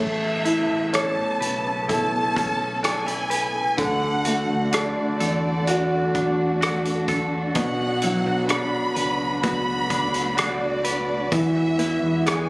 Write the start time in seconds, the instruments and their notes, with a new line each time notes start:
Already playing: fingered electric bass A1, string section C#3 B3 A4, grand piano A3, clean electric guitar A3, violin section E5
0.45 clean electric guitar E4, grand piano E4, closed hi-hat
0.70 fingered electric bass A1
0.93 clean electric guitar C#4, grand piano C#5, violin section A5, cross-stick, closed hi-hat
1.40 fingered electric bass B1, clean electric guitar B4, closed hi-hat
1.88 clean electric guitar E4, grand piano A4, string section A4, violin section A5, kick, closed hi-hat
2.36 clean electric guitar C#4, kick, closed hi-hat
2.83 clean electric guitar D4, violin section G#5, cross-stick, closed hi-hat
3.06 clean electric guitar E4, closed hi-hat
3.30 clean electric guitar B4, closed hi-hat
3.78 fingered electric bass D2, clean electric guitar D3, grand piano D3, string section A3 D4 F#4, violin section F#5, kick, closed hi-hat
4.25 grand piano A3, clean electric guitar F#4, closed hi-hat
4.49 fingered electric bass D2
4.73 clean electric guitar D4, grand piano A4, violin section D5, cross-stick, closed hi-hat
5.20 fingered electric bass E2, clean electric guitar A4, closed hi-hat
5.67 clean electric guitar F#4, grand piano F#4, closed hi-hat
6.15 clean electric guitar D4, kick, closed hi-hat
6.61 clean electric guitar F#4, cross-stick, closed hi-hat
6.85 closed hi-hat
7.08 clean electric guitar A4, kick, closed hi-hat
7.55 fingered electric bass B1, clean electric guitar B2, grand piano B2, string section B3, violin section F#5, kick, closed hi-hat
8.02 grand piano F#3, clean electric guitar E4, closed hi-hat
8.26 fingered electric bass B1, clean electric guitar F#4
8.49 clean electric guitar D4, grand piano D4, violin section B5, cross-stick, closed hi-hat
8.95 fingered electric bass C#2, clean electric guitar B4, closed hi-hat
9.43 string section A3, grand piano B3, clean electric guitar F#4, violin section B5, kick, closed hi-hat
9.90 clean electric guitar D4, kick, closed hi-hat
10.14 closed hi-hat
10.37 clean electric guitar F#4, violin section D5, cross-stick, closed hi-hat
10.85 clean electric guitar B4, closed hi-hat
11.32 fingered electric bass E2, clean electric guitar E3, string section E3 G#3, grand piano E3, violin section E5, kick, closed hi-hat
11.79 grand piano B3, clean electric guitar E4, closed hi-hat
12.02 fingered electric bass E2
12.26 clean electric guitar B3, grand piano G#4, violin section G#5, cross-stick, closed hi-hat